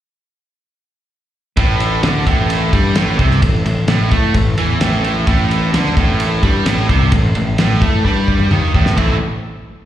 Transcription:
1.57 2.00 A1 medium
1.57 2.03 A2 medium
1.57 kick loud
1.57 ride medium
1.80 ride medium
2.03 2.25 D2 medium
2.03 2.25 D3 medium
2.03 snare loud
2.03 ride medium
2.26 2.69 A1 medium
2.26 2.72 A2 medium
2.26 kick loud
2.26 ride medium
2.50 ride medium
2.73 2.94 G2 medium
2.73 2.95 G3 medium
2.73 kick loud
2.73 ride medium
2.95 3.17 A1 medium
2.95 3.18 A2 loud
2.95 snare loud
2.95 ride medium
3.19 3.40 C2 medium
3.19 3.42 C3 medium
3.19 kick medium
3.19 ride medium
3.31 snare soft
3.42 3.64 A1 medium
3.42 3.61 A2 medium
3.42 kick medium
3.42 ride medium
3.65 3.86 A1 medium
3.65 3.84 A2 medium
3.65 ride medium
3.87 4.09 A1 medium
3.87 4.10 A2 medium
3.87 snare loud
3.87 ride medium
4.11 4.33 A2 medium
4.11 4.34 A3 medium
4.11 kick loud
4.11 ride medium
4.34 4.56 A1 medium
4.34 4.53 A2 medium
4.34 kick medium
4.34 ride medium
4.57 4.79 E2 medium
4.57 4.80 E3 medium
4.57 ride medium
4.80 5.23 A1 medium
4.80 5.26 A2 loud
4.80 snare loud
4.80 ride medium
5.04 ride medium
5.27 5.70 A1 medium
5.27 5.73 A2 loud
5.27 kick loud
5.27 ride medium
5.51 ride medium
5.72 5.94 D2 medium
5.72 5.96 D3 loud
5.72 snare loud
5.72 ride medium
5.86 snare soft
5.96 6.39 A1 medium
5.96 6.42 A2 medium
5.96 kick loud
5.96 ride medium
6.20 ride medium
6.43 6.64 G2 medium
6.43 6.65 G3 medium
6.43 kick loud
6.43 ride medium
6.65 6.87 A1 medium
6.65 6.89 A2 loud
6.65 snare loud
6.65 ride loud
6.89 7.11 C2 loud
6.89 7.12 C3 medium
6.89 kick loud
6.89 ride medium
7.12 7.33 A1 medium
7.12 7.31 A2 medium
7.12 kick medium
7.12 ride medium
7.35 7.57 A1 medium
7.35 7.55 A2 medium
7.35 ride medium
7.58 7.80 A1 medium
7.58 7.81 A2 loud
7.58 snare loud
7.58 ride medium
7.82 8.03 A2 medium
7.82 8.04 A3 medium
7.82 kick loud
7.82 ride medium
8.05 8.47 G2 medium
8.05 8.50 G3 loud
8.05 kick medium
8.28 kick medium
8.40 mid tom medium
8.51 8.72 D#2 medium
8.51 8.73 D#3 medium
8.51 mid tom medium
8.74 8.96 A1 medium
8.74 8.96 A2 medium
8.74 kick medium
8.86 snare medium
8.97 9.18 A1 medium
8.97 9.15 A2 medium
8.97 9.16 E3 medium
8.97 9.16 A3 medium
8.97 9.16 C4 medium
8.97 9.16 E4 loud
8.97 9.16 A4 medium
8.97 kick medium
8.97 floor tom medium
8.97 ride bell medium

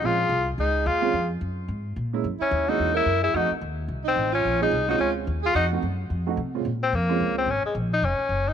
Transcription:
0.02 0.29 A#1 medium
0.02 0.18 G#3 medium
0.02 0.18 C4 medium
0.02 0.18 C#4 medium
0.02 0.19 F4 medium
0.02 0.48 F4 medium
0.02 0.47 G#4 medium
0.29 0.56 C2 medium
0.58 0.85 C#2 medium
0.58 0.88 D#4 medium
0.58 0.87 G#4 medium
0.86 1.12 D#2 medium
0.86 1.30 F4 medium
0.86 1.30 G#4 medium
1.02 1.12 G#3 medium
1.02 1.12 C4 medium
1.02 1.12 C#4 medium
1.02 1.12 F4 medium
1.13 1.40 F2 medium
1.41 1.67 F#2 medium
1.68 1.95 G#2 medium
1.96 2.23 A#2 medium
2.13 2.23 G#3 medium
2.13 2.23 A#3 medium
2.13 2.23 C#4 medium
2.13 2.23 E4 medium
2.24 2.39 F#2 medium
2.40 2.71 C#4 medium
2.40 2.69 E4 medium
2.40 muted upright bass stroke soft
2.51 2.78 D#2 medium
2.67 3.05 G#3 medium
2.67 3.05 A#3 medium
2.67 3.05 C#4 medium
2.67 2.96 D#4 medium
2.67 3.05 E4 medium
2.67 2.93 F#4 medium
2.79 3.05 E2 medium
2.94 3.22 E4 medium
2.94 3.20 A#4 medium
3.06 3.33 F#2 medium
3.23 3.37 E4 medium
3.23 3.35 G#4 medium
3.33 3.49 F2 medium
3.33 3.50 A3 medium
3.33 3.50 C4 medium
3.33 3.50 D#4 soft
3.33 3.51 D#4 medium
3.33 3.50 F#4 medium
3.51 muted upright bass stroke soft
3.61 3.88 D#2 medium
3.88 4.15 C2 medium
4.04 4.33 C4 medium
4.04 4.31 D#4 medium
4.16 4.43 A1 medium
4.32 4.60 C#4 medium
4.32 4.58 F4 medium
4.45 4.71 A#1 medium
4.61 4.71 G#3 medium
4.61 4.71 C4 medium
4.61 4.71 C#4 medium
4.61 4.88 D#4 medium
4.61 4.71 F4 medium
4.61 4.87 G#4 medium
4.71 4.98 C2 medium
4.88 5.25 G#3 medium
4.88 5.25 C4 medium
4.88 5.25 C#4 medium
4.88 5.00 D#4 medium
4.88 5.25 F4 medium
4.88 4.97 F#4 medium
4.98 5.26 C#2 medium
4.98 5.10 C#4 medium
4.98 5.14 F4 medium
5.27 5.54 D#2 medium
5.43 5.55 F4 medium
5.43 5.53 G#4 medium
5.54 5.81 F2 medium
5.54 5.65 D#4 medium
5.54 5.70 F#4 medium
5.72 5.82 A3 medium
5.72 5.82 C4 medium
5.72 5.82 D#4 medium
5.72 5.82 F#4 medium
5.82 6.09 F#2 medium
6.10 6.37 F2 medium
6.27 6.36 A3 medium
6.27 6.36 C4 medium
6.27 6.37 D#4 medium
6.27 6.36 F#4 medium
6.37 6.64 C3 medium
6.54 6.64 A#2 medium
6.54 6.64 G#3 medium
6.54 6.64 C4 medium
6.54 6.64 C#4 medium
6.54 6.64 F4 medium
6.65 6.92 A#2 medium
6.83 6.97 C4 medium
6.93 7.19 F2 medium
6.93 7.38 A#3 medium
7.09 7.45 G#3 medium
7.09 7.46 A#3 medium
7.09 7.46 C4 medium
7.09 7.46 C#4 medium
7.09 7.46 F4 medium
7.20 7.46 C#2 medium
7.38 7.52 C4 medium
7.46 7.62 G#1 medium
7.51 7.65 C#4 medium
7.63 7.75 G#3 medium
7.63 muted upright bass stroke soft
7.75 8.02 A#1 medium
7.94 8.06 D#4 medium
8.02 8.18 F1 medium
8.02 8.50 C#4 medium
8.19 muted upright bass stroke soft
8.29 8.53 F#1 medium
8.49 8.53 D#4 medium

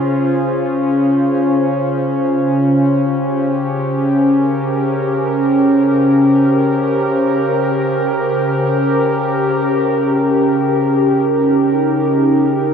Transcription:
0.00 12.74 C#3 medium
0.00 12.74 C#4 medium
0.00 2.96 F4 medium
0.00 1.64 G#4 medium
0.00 9.89 C5 medium
2.84 12.74 G4 medium
4.06 12.74 A#4 medium
11.29 12.74 D#4 medium

